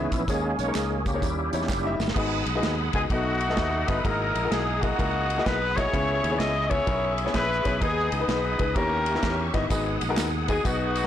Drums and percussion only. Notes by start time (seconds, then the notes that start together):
0.12 kick, snare, closed hi-hat, tambourine
0.28 kick, closed hi-hat, tambourine
0.59 closed hi-hat, tambourine
0.75 snare, clap, closed hi-hat, tambourine
1.06 kick, closed hi-hat, tambourine
1.22 kick, closed hi-hat, tambourine
1.53 closed hi-hat, tambourine
1.62 snare
1.69 kick, snare, clap, tambourine
2.00 snare, tambourine
2.08 snare
2.16 kick, crash
2.46 ride
2.63 snare, ride
2.93 kick, ride
3.10 kick, ride
3.41 ride
3.49 snare
3.57 kick, snare, ride
3.88 kick, snare, ride
4.05 kick, ride
4.35 ride
4.52 snare, ride
4.83 kick, ride
4.99 kick, ride
5.30 ride
5.38 snare
5.46 kick, snare, ride
5.78 kick, snare, ride
5.94 kick, ride
6.24 ride
6.40 snare, ride
6.71 kick, ride
6.87 kick, ride
7.18 ride
7.26 snare
7.34 kick, snare, ride
7.65 kick, snare, ride
7.81 kick, ride
8.12 ride
8.29 snare, ride
8.59 kick, ride
8.76 kick, ride
9.06 ride
9.15 snare
9.23 kick, snare, ride
9.54 kick, snare, ride
9.70 kick, ride, tambourine
10.01 ride, tambourine
10.17 snare, clap, ride, tambourine
10.48 kick, ride, tambourine
10.65 kick, ride, tambourine
10.96 ride, tambourine